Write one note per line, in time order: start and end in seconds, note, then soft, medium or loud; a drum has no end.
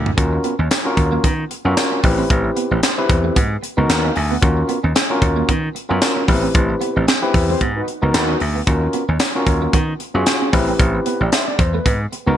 0.00 0.10 D2 medium
0.06 floor tom medium
0.17 0.37 D#2 loud
0.17 0.53 C#4 medium
0.17 0.53 F4 medium
0.17 0.53 F#4 medium
0.17 0.53 A#4 medium
0.17 kick loud
0.17 closed hi-hat medium
0.32 muted clean electric guitar stroke soft
0.44 0.53 B3 medium
0.44 closed hi-hat medium
0.59 0.68 D#2 medium
0.59 0.66 C#4 medium
0.71 0.80 C#4 medium
0.71 snare loud
0.71 clap medium
0.71 closed hi-hat loud
0.71 tambourine loud
0.85 1.25 C#4 loud
0.85 1.26 F4 medium
0.85 1.26 F#4 medium
0.85 1.26 A#4 loud
0.85 muted clean electric guitar stroke soft
0.97 1.17 D#2 medium
0.97 kick loud
0.97 closed hi-hat medium
1.12 1.19 A#3 medium
1.24 1.44 D#3 loud
1.24 1.33 B3 medium
1.24 kick loud
1.24 closed hi-hat medium
1.51 muted clean electric guitar stroke soft
1.51 closed hi-hat medium
1.65 1.74 F#2 medium
1.65 1.73 B3 medium
1.65 1.99 C#4 loud
1.65 1.99 F4 medium
1.65 1.99 F#4 medium
1.65 1.99 A#4 loud
1.77 snare loud
1.77 clap medium
1.77 closed hi-hat medium
1.77 tambourine loud
1.92 1.99 C#4 medium
2.03 2.23 A1 medium
2.03 2.79 C4 medium
2.03 2.79 E4 medium
2.03 2.79 G4 medium
2.03 2.79 B4 loud
2.03 muted clean electric guitar stroke soft
2.03 kick loud
2.03 open hi-hat medium
2.18 2.25 C4 medium
2.30 2.50 A1 loud
2.30 kick loud
2.30 closed hi-hat medium
2.44 muted clean electric guitar stroke soft
2.56 2.66 B3 medium
2.56 closed hi-hat medium
2.71 2.80 A1 medium
2.71 2.78 C4 medium
2.83 2.92 C4 medium
2.83 snare loud
2.83 clap loud
2.83 closed hi-hat medium
2.83 tambourine medium
2.98 3.36 C4 loud
2.98 3.36 E4 medium
2.98 3.36 G4 medium
2.98 3.37 B4 loud
2.98 muted clean electric guitar stroke soft
3.09 3.29 E2 loud
3.09 kick loud
3.09 closed hi-hat medium
3.24 3.31 A3 medium
3.36 3.56 G#2 loud
3.36 3.45 B3 medium
3.36 kick loud
3.36 closed hi-hat loud
3.63 muted clean electric guitar stroke soft
3.63 closed hi-hat medium
3.77 3.86 C#2 medium
3.77 3.84 B3 medium
3.77 4.11 B3 medium
3.77 4.11 D#4 loud
3.77 4.11 F#4 medium
3.77 4.11 A#4 loud
3.89 4.09 D#2 loud
3.89 snare loud
3.89 clap loud
3.89 closed hi-hat medium
3.89 tambourine loud
4.04 4.11 C#4 medium
4.04 4.15 F5 medium
4.16 4.36 D2 medium
4.16 4.30 G#5 medium
4.16 muted clean electric guitar stroke soft
4.16 open hi-hat medium
4.31 4.38 B3 medium
4.31 4.56 F#5 medium
4.42 4.62 D#2 loud
4.42 4.78 C#4 medium
4.42 4.78 F4 medium
4.42 4.78 F#4 medium
4.42 4.78 A#4 medium
4.42 kick loud
4.42 closed hi-hat medium
4.57 muted clean electric guitar stroke medium
4.69 4.78 B3 medium
4.69 closed hi-hat medium
4.83 4.92 D#2 medium
4.83 4.91 C#4 medium
4.95 5.04 C#4 medium
4.95 snare loud
4.95 clap medium
4.95 closed hi-hat loud
4.95 tambourine loud
5.10 5.50 C#4 loud
5.10 5.50 F4 medium
5.10 5.51 F#4 medium
5.10 5.51 A#4 loud
5.10 muted clean electric guitar stroke soft
5.22 5.41 D#2 loud
5.22 kick loud
5.22 closed hi-hat medium
5.36 5.44 A#3 medium
5.48 5.68 D#3 loud
5.48 5.58 B3 medium
5.48 kick loud
5.48 closed hi-hat medium
5.75 muted clean electric guitar stroke soft
5.75 closed hi-hat medium
5.89 5.99 F#2 loud
5.89 5.97 B3 medium
5.89 6.23 C#4 loud
5.89 6.23 F4 medium
5.89 6.24 F#4 medium
5.89 6.24 A#4 loud
6.02 snare loud
6.02 clap medium
6.02 closed hi-hat medium
6.02 tambourine loud
6.16 6.23 C#4 medium
6.28 6.48 A1 loud
6.28 6.35 B3 medium
6.28 7.03 E4 medium
6.28 7.03 G4 medium
6.28 7.03 B4 loud
6.28 kick medium
6.28 open hi-hat medium
6.34 7.06 C4 medium
6.42 6.50 C4 medium
6.55 6.74 A1 loud
6.55 kick loud
6.55 closed hi-hat medium
6.70 muted clean electric guitar stroke soft
6.81 6.90 B3 medium
6.81 closed hi-hat medium
6.96 7.05 A1 medium
6.96 7.03 C4 medium
7.07 7.17 C4 medium
7.07 snare loud
7.07 clap medium
7.07 closed hi-hat medium
7.07 tambourine medium
7.22 7.61 C4 loud
7.22 7.61 E4 medium
7.22 7.61 G4 loud
7.22 7.61 B4 loud
7.22 muted clean electric guitar stroke soft
7.34 7.54 E2 loud
7.34 kick loud
7.34 open hi-hat medium
7.49 7.57 A3 medium
7.49 7.60 E4 medium
7.49 7.59 G4 medium
7.49 7.59 C5 medium
7.61 7.80 G#2 loud
7.61 7.70 B3 medium
7.61 kick medium
7.61 closed hi-hat loud
7.76 7.86 D#4 medium
7.76 7.86 F#4 medium
7.76 7.86 B4 medium
7.88 muted clean electric guitar stroke soft
7.88 closed hi-hat medium
8.02 8.11 C#2 medium
8.02 8.36 B3 medium
8.02 8.10 B3 medium
8.02 8.36 D#4 medium
8.02 8.36 F#4 medium
8.02 8.36 A#4 loud
8.14 8.34 D#2 medium
8.14 8.37 D#4 loud
8.14 8.37 F#4 loud
8.14 8.37 B4 loud
8.14 snare loud
8.14 clap loud
8.14 closed hi-hat medium
8.14 tambourine loud
8.28 8.36 C#4 medium
8.40 8.60 D2 medium
8.40 muted clean electric guitar stroke soft
8.40 open hi-hat medium
8.55 8.63 B3 medium
8.67 8.87 D#2 loud
8.67 9.03 C#4 medium
8.67 9.03 F4 medium
8.67 9.03 F#4 medium
8.67 9.03 A#4 medium
8.67 kick loud
8.67 closed hi-hat medium
8.82 muted clean electric guitar stroke soft
8.93 9.03 B3 medium
8.93 closed hi-hat medium
9.09 9.17 D#2 medium
9.09 9.16 C#4 medium
9.20 9.29 C#4 medium
9.20 snare loud
9.20 clap medium
9.20 closed hi-hat medium
9.20 tambourine loud
9.35 9.75 C#4 loud
9.35 9.76 F4 medium
9.35 9.76 F#4 medium
9.35 9.76 A#4 loud
9.35 muted clean electric guitar stroke soft
9.47 9.66 D#2 medium
9.47 kick medium
9.47 closed hi-hat medium
9.62 9.69 A#3 medium
9.73 9.93 D#3 loud
9.73 9.83 B3 medium
9.73 kick loud
9.73 closed hi-hat medium
10.00 muted clean electric guitar stroke soft
10.00 closed hi-hat medium
10.14 10.23 F#2 medium
10.14 10.22 B3 medium
10.14 10.48 C#4 medium
10.14 10.49 F4 medium
10.14 10.49 F#4 loud
10.14 10.49 G#4 loud
10.26 snare loud
10.26 clap medium
10.26 closed hi-hat medium
10.26 tambourine loud
10.42 10.49 C#4 medium
10.52 10.73 A1 loud
10.52 11.28 C4 medium
10.52 11.28 E4 medium
10.52 11.28 G4 medium
10.52 11.05 B4 loud
10.52 kick loud
10.52 open hi-hat medium
10.68 10.75 C4 medium
10.79 10.99 A1 loud
10.79 kick loud
10.79 closed hi-hat medium
10.95 muted clean electric guitar stroke soft
11.06 11.15 B3 medium
11.06 11.20 B4 medium
11.06 closed hi-hat medium
11.21 11.29 A1 medium
11.21 11.28 C4 medium
11.21 11.32 D5 medium
11.32 11.42 C4 medium
11.32 11.47 E5 medium
11.32 snare loud
11.32 clap medium
11.32 closed hi-hat medium
11.32 tambourine medium
11.47 11.59 D5 medium
11.47 muted clean electric guitar stroke soft
11.59 11.78 E2 loud
11.59 11.73 C5 medium
11.59 kick loud
11.59 closed hi-hat medium
11.74 11.81 A3 medium
11.74 11.99 B4 medium
11.86 12.05 G#2 loud
11.86 11.95 B3 medium
11.86 kick loud
11.86 closed hi-hat loud
12.12 muted clean electric guitar stroke soft
12.12 closed hi-hat medium
12.27 12.36 C#2 medium
12.27 12.37 B3 loud
12.27 12.34 B3 medium
12.27 12.37 D#4 medium
12.27 12.37 F#4 medium
12.27 12.37 A#4 loud